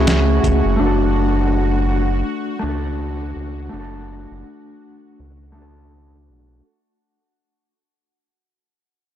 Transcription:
Already playing: clean electric guitar A3 C#4 E4 G#4, synth drone F#4
0.07 analog synth bass C#2, snare, closed hi-hat
0.44 analog synth bass C#2, kick, closed hi-hat
0.65 analog synth bass F#1
0.76 analog synth bass F#1, clean electric guitar A3 D4
0.83 clean electric guitar F#4 A4
2.59 analog synth bass C#2, clean electric guitar A3 D4
2.66 clean electric guitar F#4 A4
3.36 analog synth bass C#2
3.69 analog synth bass F#1, clean electric guitar A3 D4
3.76 clean electric guitar F#4 A4
4.31 analog synth bass F#1
5.20 analog synth bass C#2
5.52 clean electric guitar A3 D4
5.58 clean electric guitar F#4 A4
6.29 analog synth bass B1

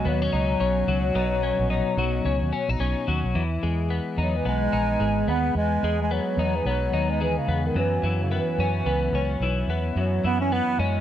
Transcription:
Already playing: clean electric guitar B2 F#3 D#4
0.05 fingered electric bass D#2, bass clarinet F#3, clean electric guitar B3
0.22 clean electric guitar C#4
0.33 fingered electric bass C#2, clean electric guitar D#4
0.60 fingered electric bass B1, clean electric guitar C#4
0.88 fingered electric bass C#2, clean electric guitar F#3
1.15 fingered electric bass B1, clean electric guitar B2 D#4
1.43 clean electric guitar C#4
1.59 fingered electric bass A#1
1.70 clean electric guitar D#4
1.97 fingered electric bass B1, clean electric guitar F#3
2.25 fingered electric bass C#2, clean electric guitar C#4
2.41 fingered electric bass D#2
2.53 clean electric guitar C#4
2.69 fingered electric bass A#1, clean electric guitar D#4
2.80 fingered electric bass B1, clean electric guitar C#4
3.08 fingered electric bass D#2, clean electric guitar F#3
3.24 fingered electric bass B1
3.35 fingered electric bass E2, clean electric guitar E3
3.63 fingered electric bass E2, clean electric guitar G#3
3.90 clean electric guitar B3
4.17 fingered electric bass E2, bass clarinet F#3, clean electric guitar D#4
4.37 bass clarinet E3
4.45 fingered electric bass B1, bass clarinet G#3, clean electric guitar B3
4.73 fingered electric bass A#1, clean electric guitar D#4
5.00 fingered electric bass G#1, clean electric guitar G#3
5.27 fingered electric bass D#2, clean electric guitar B3, bass clarinet B3
5.55 fingered electric bass E2, bass clarinet G#3
5.83 fingered electric bass E2, clean electric guitar G#3
6.02 bass clarinet G#3
6.11 bass clarinet F#3, clean electric guitar B3
6.37 fingered electric bass E2, clean electric guitar D#4
6.56 bass clarinet E3
6.65 fingered electric bass B1, bass clarinet F#3, clean electric guitar B3
6.93 fingered electric bass D#2, clean electric guitar D#4
7.10 bass clarinet G#3
7.21 bass clarinet E3, clean electric guitar G#3
7.38 bass clarinet C#3
7.48 fingered electric bass E2, clean electric guitar B3
7.66 bass clarinet D#3
7.75 fingered electric bass F#2, clean electric guitar F#2, bass clarinet E3
8.03 fingered electric bass F#2, clean electric guitar E3
8.22 bass clarinet C#3
8.32 bass clarinet E3, clean electric guitar B3
8.58 fingered electric bass F#2, clean electric guitar C#4
8.85 fingered electric bass C#2, clean electric guitar B3
9.13 fingered electric bass C#2, clean electric guitar C#4
9.40 fingered electric bass B1, clean electric guitar E3
9.68 fingered electric bass E2, clean electric guitar B3
9.96 fingered electric bass F#2, clean electric guitar F#2, bass clarinet F#3
10.24 fingered electric bass F#2, clean electric guitar E3, bass clarinet B3
10.41 bass clarinet C#4
10.52 clean electric guitar B3, bass clarinet B3
10.79 fingered electric bass F#2, bass clarinet G#3, clean electric guitar C#4

